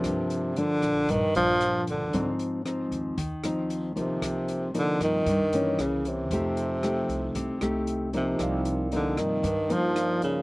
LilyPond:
<<
  \new Staff \with { instrumentName = "Tine electric piano" } { \time 4/4 \key c \minor \tempo 4 = 115 r1 | r1 | r1 | r1 |
<ees' bes' d'' f''>2. <ees' bes' d'' f''>4 | }
  \new Staff \with { instrumentName = "Nylon-string guitar" } { \time 4/4 \key c \minor << { <f bes d'>4 <f bes d'>4 r8 <f bes d'>4. | <f c' ees'>4 <f c' ees'>4 r8 <f c' ees'>4 <f bes ees'>8~ | <f bes ees'>4 <f bes ees'>4 r8 <e bes des'>4. | <a ees' g'>4 <a ees' g'>4. <a ees' g'>4 <f bes ees'>8~ |
<f bes ees'>4 <f bes ees'>4 r8 <f bes ees'>4. | } \\ { g,2 g,2 | aes,2 ees2 | c2 g,4 r4 | f2 c2 |
c2 g,2 | } >> }
  \new Staff \with { instrumentName = "Tenor saxophone" } { \clef bass \time 4/4 \key c \minor c4 d4 ees8 f4 d8~ | d8 r2. c8~ | c4 d8 ees4. des8 c8~ | c2. r8 c8~ |
c4 d8 ees4 f4 des8 | }
  \new Staff \with { instrumentName = "Upright bass" } { \clef bass \time 4/4 \key c \minor g,4. bes,,8 bes,,16 r16 bes,,4. | aes,4. ees,8 ees,16 r16 ees,4. | c,4. g,8 g,16 r16 g,8 c,4 | f,4. c,8 c,16 r16 c,4. |
c,4. g,8 g,16 r16 g,4. | }
  \new DrumStaff \with { instrumentName = "Drums" } \drummode { \time 4/4 <hh bd ss>8 hh8 hh8 <hh bd ss>8 <hh bd>8 hh8 <hh ss>8 <hh bd>8 | <hh bd>8 hh8 <hh ss>8 <hh bd>8 <hh bd>8 <hh ss>8 hh8 <hh bd>8 | <hh bd ss>8 hh8 hh8 <hh bd ss>8 <hh bd>8 hh8 <hh ss>8 <hh bd>8 | <hh bd>8 hh8 <hh ss>8 <hh bd>8 <hh bd>8 <hh ss>8 hh8 <hh bd>8 |
<hh bd ss>8 hh8 hh8 <hh bd ss>8 <hh bd>8 hh8 <hh ss>8 <hh bd>8 | }
>>